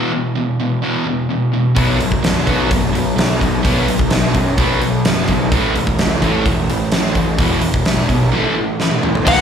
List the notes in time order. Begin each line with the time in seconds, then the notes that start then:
Already playing: E2 B2 E3
0.13 E2 B2
0.37 E2 B2
0.61 E2 B2
0.83 E2 B2 E3
1.06 E2 B2
1.29 E2 B2
1.52 E2 B2
1.75 B1 B2 F#3 B3, kick, open hi-hat
2.00 F#1 B2 F#3, open hi-hat
2.12 kick
2.23 E2 B2 F#3, snare, open hi-hat
2.47 B1 B2 F#3 B3, kick, open hi-hat
2.71 F#1 B2 F#3, kick, open hi-hat
2.93 B1 B2 F#3, open hi-hat
3.17 B1 B2 F#3, snare, open hi-hat
3.41 B2 F#3, kick, open hi-hat
3.65 B1 B2 F#3 B3, kick, open hi-hat
3.88 B1 B2 F#3, open hi-hat
3.99 kick
4.10 B1 B2 F#3, snare, open hi-hat
4.34 F#2 B2 F#3, kick, open hi-hat
4.58 B1 B2 F#3 B3, kick, open hi-hat
4.81 B1 B2 F#3, open hi-hat
5.05 F#1 B2 F#3, snare, open hi-hat
5.28 B1 B2 F#3, kick, open hi-hat
5.52 A1 A2 E3 A3, kick, open hi-hat
5.75 E1 A2 E3, open hi-hat
5.87 kick
5.99 C#2 A2 E3, snare, open hi-hat
6.22 A1 A2 E3 A3, kick, open hi-hat
6.46 E1 A2 E3, kick, open hi-hat
6.69 A1 A2 E3, open hi-hat
6.92 A1 A2 E3, snare, open hi-hat
7.15 A2 E3, kick, open hi-hat
7.38 E1 E2 B2 E3, kick, open hi-hat
7.61 E1 E2 B2, open hi-hat
7.74 kick
7.85 E1 E2 B2, snare, open hi-hat
8.09 B1 E2 B2, kick, open hi-hat
8.33 A2 E3 A3
8.58 A2 E3
8.80 A2 E3, snare
8.91 high tom
9.03 A2 E3, mid tom
9.15 floor tom
9.27 B1 B2 D#3 F#3 B3 D#4 F#5, kick, crash